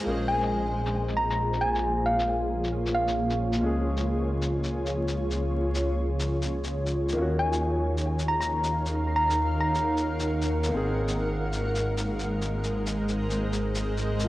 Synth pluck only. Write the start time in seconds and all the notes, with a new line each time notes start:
0.28 G#5
1.17 A#5
1.30 A#5
1.61 G#5
2.06 F5
2.94 F5
7.39 G#5
8.28 A#5
8.41 A#5
9.16 A#5
9.60 A#5